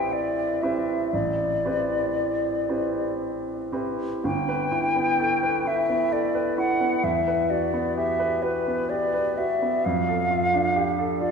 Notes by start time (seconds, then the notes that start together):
Already playing: A1 C4 E4 G4 B4 G5
0.12 D5
0.62 C4 E4 G4 B4 E5
1.12 A1 D5
1.65 C4 E4 G4 B4
2.69 C4 E4 G4 B4
3.72 C4 E4 G4 B4
4.24 G1 G5
4.49 B4
4.72 E4
4.96 B3
5.20 A4
5.43 B4
5.65 E4 E5
5.89 B3
6.11 A4 D5
6.35 B4
6.58 E4 F#5
6.81 B3
7.04 E2 E5
7.28 B4
7.50 F#4 D5
7.74 B3
7.97 G4 E5
8.20 B4
8.43 F#4 B4
8.67 B3
8.90 G4 D5
9.14 B4
9.38 F#4 E5
9.62 B3
9.85 F2 F5
10.09 A4
10.31 F4
10.54 D4
10.76 G4
10.99 A4
11.20 F4 D5